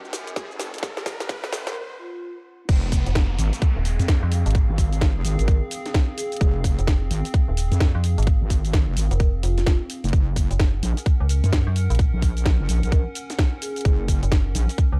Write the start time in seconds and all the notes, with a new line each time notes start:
Already playing: C#2 C#4 A#4 F#5, riser
0.05 shaker
0.13 F#2, snare, open hi-hat, shaker
0.27 closed hi-hat, shaker
0.36 kick, snare, closed hi-hat, shaker
0.51 F#1, shaker
0.60 snare, open hi-hat, shaker
0.74 closed hi-hat, shaker
0.78 closed hi-hat
0.83 F#1, kick, snare, closed hi-hat, shaker
0.97 snare, shaker
1.06 kick, snare, open hi-hat, shaker
1.20 snare, closed hi-hat, shaker
1.29 F#2, kick, snare, closed hi-hat, shaker
1.44 snare, shaker
1.53 snare, open hi-hat, shaker
1.67 F#1 A#4, snare, closed hi-hat, shaker
1.99 F4
2.14 F4
2.69 F1 C4, kick, closed hi-hat, crash, downlifter, shaker
2.92 G#4, kick, open hi-hat, shaker
3.06 F1, closed hi-hat, shaker
3.15 kick, snare, closed hi-hat, shaker
3.22 F5
3.39 G#1, open hi-hat, shaker
3.53 open hi-hat, shaker
3.62 kick, closed hi-hat, shaker
3.76 D#1
3.85 open hi-hat, shaker
3.99 F2, closed hi-hat, shaker
4.08 kick, snare, closed hi-hat, shaker
4.23 F2
4.32 open hi-hat, shaker
4.46 G#1, closed hi-hat, shaker
4.50 closed hi-hat
4.55 kick, closed hi-hat, shaker
4.69 G#1
4.78 kick, open hi-hat, shaker
4.93 open hi-hat, shaker
5.01 kick, snare, closed hi-hat, shaker
5.16 F1
5.25 G#1, open hi-hat, shaker
5.39 G#1 A#4, closed hi-hat, shaker
5.48 kick, closed hi-hat, shaker
5.71 open hi-hat, shaker
5.86 snare, closed hi-hat, shaker
5.94 kick, snare, closed hi-hat, shaker
6.18 G#4, open hi-hat, shaker
6.32 closed hi-hat, shaker
6.36 closed hi-hat
6.41 F1, kick, closed hi-hat, shaker
6.64 kick, open hi-hat, shaker
6.79 F1, closed hi-hat, shaker
6.87 kick, snare, closed hi-hat, shaker
7.11 G#1, open hi-hat, shaker
7.25 open hi-hat, shaker
7.34 kick, closed hi-hat, shaker
7.48 D#1
7.57 open hi-hat, shaker
7.72 F2, closed hi-hat, shaker
7.80 kick, snare, closed hi-hat, shaker
7.95 F2
8.04 open hi-hat, shaker
8.18 G#1, closed hi-hat, shaker
8.23 closed hi-hat
8.27 kick, closed hi-hat, shaker
8.41 G#1
8.50 kick, open hi-hat, shaker
8.65 open hi-hat, shaker
8.73 kick, snare, closed hi-hat, shaker
8.88 F1
8.97 G#1, open hi-hat, shaker
9.11 F1 A#4, closed hi-hat, shaker
9.20 kick, closed hi-hat, shaker
9.43 F1 F4, open hi-hat, shaker
9.58 F4, snare, closed hi-hat, shaker
9.66 kick, snare, closed hi-hat, shaker
9.90 open hi-hat, shaker
10.04 F1, closed hi-hat, shaker
10.09 closed hi-hat
10.13 F#1 C#4, kick, closed hi-hat, shaker
10.31 A#4 F#5
10.36 kick, open hi-hat, shaker
10.51 F#1, closed hi-hat, shaker
10.60 kick, snare, closed hi-hat, shaker
10.83 A#1, open hi-hat, shaker
10.97 open hi-hat, shaker
11.06 kick, closed hi-hat, shaker
11.20 C#2
11.29 open hi-hat, shaker
11.44 F#2, closed hi-hat, shaker
11.53 kick, snare, closed hi-hat, shaker
11.67 F#2
11.76 open hi-hat, shaker
11.90 A#1, closed hi-hat, shaker
11.95 closed hi-hat
11.99 kick, closed hi-hat, shaker
12.14 A#1
12.22 kick, open hi-hat, shaker
12.37 open hi-hat, shaker
12.46 kick, snare, closed hi-hat, shaker
12.60 F#1
12.69 A#1, open hi-hat, shaker
12.83 A#1 A#4, closed hi-hat, shaker
12.92 kick, closed hi-hat, shaker
13.15 open hi-hat, shaker
13.30 snare, closed hi-hat, shaker
13.39 kick, snare, closed hi-hat, shaker
13.62 G#4, open hi-hat, shaker
13.76 closed hi-hat, shaker
13.81 closed hi-hat
13.85 F#1, kick, closed hi-hat, shaker
14.08 kick, open hi-hat, shaker
14.23 F#1, closed hi-hat, shaker
14.32 kick, snare, closed hi-hat, shaker
14.55 A#1, open hi-hat, shaker
14.69 open hi-hat, shaker
14.78 kick, closed hi-hat, shaker
14.92 C#2